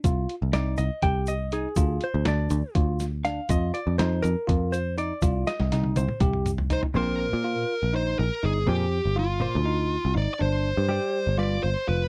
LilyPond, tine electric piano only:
\new Staff \with { instrumentName = "Tine electric piano" } { \time 7/8 \key c \minor \tempo 4 = 122 f'4 ees'4 g'4 ees'8 | f'4 d'4 f'4 d'8 | f'4 ees'4 f'4 ees'8 | f'4 ees'4 g'4 ees'8 |
c'4 f'4 ees'4 ees'8 | c'4 f'4 ees'4 ees'8 | d'4 g'4 f'4 f'8 | }